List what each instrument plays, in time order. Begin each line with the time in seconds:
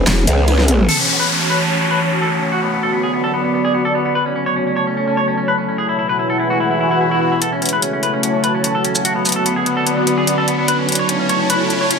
Already playing: ambient pad E3 B3 C#4 G#4 B4
0.07 wobble bass E1, snare, clap, ride, shaker
0.27 wobble bass C#2, closed hi-hat
0.48 high tom, ride
0.58 snare, high tom
0.68 closed hi-hat, mid tom
0.79 mid tom
0.88 ambient pad E3 A3 C#4 F#4 C#5, analog synth pad F#4, clean electric guitar A4, crash, downlifter
0.99 clean electric guitar C#4, analog synth pad C#5
1.09 clean electric guitar C#4, analog synth pad A5
1.20 clean electric guitar B4
1.29 clean electric guitar C#4
1.40 clean electric guitar C#4
1.50 clean electric guitar B4
1.60 clean electric guitar C#4
1.70 clean electric guitar C#4
1.81 clean electric guitar C#4
1.91 clean electric guitar B4
2.01 clean electric guitar C#4
2.11 clean electric guitar C#4
2.22 clean electric guitar A4
2.32 clean electric guitar C#4
2.42 clean electric guitar C#4
2.52 ambient pad D3 F#3 B3 B4, analog synth pad B3, clean electric guitar F#4
2.63 clean electric guitar B3
2.72 clean electric guitar B3
2.83 clean electric guitar A4
2.93 clean electric guitar B3
2.99 analog synth pad D5
3.03 clean electric guitar G#4
3.13 clean electric guitar B3
3.24 clean electric guitar A4
3.34 clean electric guitar B3
3.44 clean electric guitar B3
3.54 clean electric guitar B3
3.65 clean electric guitar G#4
3.74 clean electric guitar B3
3.85 clean electric guitar A4
3.95 clean electric guitar B3
4.05 clean electric guitar B3
4.15 ambient pad C#3 A3 E4 A4, clean electric guitar B4
4.24 clean electric guitar C#4, analog synth pad C#5
4.36 clean electric guitar C#4, analog synth pad A5
4.46 clean electric guitar C#5
4.56 clean electric guitar C#4
4.67 clean electric guitar C#4
4.76 clean electric guitar C#5
4.87 clean electric guitar C#4
4.97 clean electric guitar C#4
5.07 clean electric guitar C#4
5.17 clean electric guitar C#5
5.28 clean electric guitar C#4
5.37 clean electric guitar C#4
5.48 clean electric guitar B4
5.58 clean electric guitar C#4
5.68 clean electric guitar C#4
5.78 ambient pad B2 E3 G#3 G#4, analog synth pad E4, clean electric guitar G#4
5.86 clean electric guitar E4, analog synth pad B4
5.94 analog synth pad F#5
5.99 clean electric guitar E4
6.09 clean electric guitar B4
6.14 analog synth pad G#5
6.19 clean electric guitar E4
6.30 clean electric guitar A4
6.40 clean electric guitar E4
6.50 clean electric guitar F#4
6.60 clean electric guitar E4, swell
6.71 clean electric guitar E4
6.81 clean electric guitar E4
6.91 clean electric guitar E4
7.01 clean electric guitar E4
7.11 clean electric guitar E4
7.21 clean electric guitar E4
7.32 clean electric guitar E4
7.41 ambient pad C#3 F#3 A3 E4 A4, analog synth pad F#4, clean electric guitar A4, closed hi-hat, riser
7.52 clean electric guitar C#4
7.59 clean electric guitar C#4, analog synth pad C#5, closed hi-hat
7.66 closed hi-hat
7.69 closed hi-hat
7.73 clean electric guitar B4
7.82 clean electric guitar C#4, closed hi-hat
7.91 clean electric guitar C#4, analog synth pad A5
8.03 clean electric guitar B4, closed hi-hat
8.14 clean electric guitar C#4
8.23 clean electric guitar C#4, closed hi-hat
8.34 clean electric guitar C#4
8.44 clean electric guitar B4, closed hi-hat
8.54 clean electric guitar C#4
8.64 clean electric guitar C#4, closed hi-hat
8.75 clean electric guitar A4
8.85 clean electric guitar C#4, closed hi-hat
8.95 clean electric guitar C#4, shaker
9.05 ambient pad D3 B3 F#4 B4, analog synth pad B3, clean electric guitar F#4, closed hi-hat
9.15 clean electric guitar B3
9.25 clean electric guitar B3, closed hi-hat, shaker
9.29 closed hi-hat
9.32 clean electric guitar A4, closed hi-hat
9.46 clean electric guitar B3, closed hi-hat
9.52 analog synth pad D5
9.56 clean electric guitar G#4
9.66 clean electric guitar B3, closed hi-hat
9.77 clean electric guitar A4
9.87 clean electric guitar B3, closed hi-hat
9.97 clean electric guitar B3
10.07 clean electric guitar B3, closed hi-hat
10.18 clean electric guitar G#4
10.27 clean electric guitar B3, closed hi-hat
10.38 clean electric guitar A4
10.48 clean electric guitar B3, closed hi-hat
10.58 clean electric guitar B3
10.68 ambient pad C#3 A3 E4 A4, clean electric guitar B4, closed hi-hat
10.79 clean electric guitar C#4, analog synth pad A5
10.89 clean electric guitar C#4, closed hi-hat
10.92 analog synth pad C#5, closed hi-hat
10.95 clean electric guitar C#5, closed hi-hat
11.09 clean electric guitar C#4, closed hi-hat
11.20 clean electric guitar C#4
11.29 clean electric guitar C#5, closed hi-hat
11.40 clean electric guitar C#4
11.50 clean electric guitar B4, closed hi-hat
11.60 clean electric guitar C#4
11.70 clean electric guitar C#4, closed hi-hat
11.81 clean electric guitar C#5
11.91 clean electric guitar C#4, closed hi-hat